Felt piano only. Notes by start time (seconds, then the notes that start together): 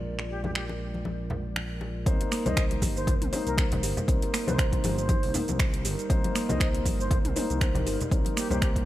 Already playing: G#3 D4 A#4
2.06 A#3 D#4 C5
2.46 A#3 D#4 C5
3.33 A#3 D#4 C5
4.08 A#3 D#4 C5
4.47 A#3 D#4 C5
6.10 A#3 D#4 C5
6.49 A#3 D#4 C5
7.36 A#3 D#4 C5
8.12 A#3 D#4 C5
8.51 A#3 D#4 C5